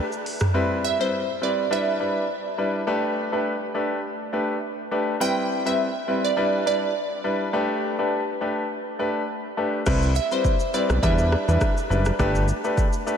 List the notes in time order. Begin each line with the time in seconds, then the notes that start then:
Already playing: G5
0.12 shaker
0.26 open hi-hat
0.40 cross-stick, mid tom, shaker
0.54 G3 C4 E4 B4
0.85 E5
0.99 G3 C4 E4 B4 C5
1.41 G3 C4 E4 B4 D5
1.70 G3 D4 E4 B4 E5
2.00 G3 D4 E4 B4
2.58 G3 D4 E4 B4
2.87 A3 D4 G4 B4
3.32 A3 D4 G4 B4
3.74 A3 D4 G4 B4
4.33 A3 D4 G4 B4
4.91 A3 D4 G4 B4
5.20 G3 C4 E4 B4 G5
5.66 G3 C4 E4 B4 E5
6.07 G3 C4 E4 B4
6.25 D5
6.37 G3 D4 E4 B4
6.66 G3 D4 E4 B4 D5
7.24 G3 D4 E4 B4
7.53 A3 D4 G4 B4
7.99 A3 D4 G4 B4
8.41 A3 D4 G4 B4
8.99 A3 D4 G4 B4
9.57 A3 D4 G4 B4
9.86 C2 G3 C4 E4 B4, kick, cross-stick, crash, shaker
10.02 shaker
10.15 E5, shaker
10.31 G3 C4 E4 B4 C5, shaker
10.45 kick, shaker
10.60 shaker
10.74 G3 C4 E4 B4 D5, shaker
10.90 B1, cross-stick, shaker
11.03 E2 G3 D4 E4 B4 E5, kick, shaker
11.18 shaker
11.32 cross-stick
11.48 E2 G3 D4 E4 B4, shaker
11.61 kick, cross-stick, shaker
11.77 shaker
11.90 F#1 G3 D4 E4 B4, shaker
12.05 cross-stick, shaker
12.19 G1 A3 D4 G4 B4, kick, cross-stick, shaker
12.35 shaker
12.48 shaker
12.64 A3 D4 G4 B4, shaker
12.78 kick, shaker
12.93 shaker
13.06 A3 D4 G4 B4, shaker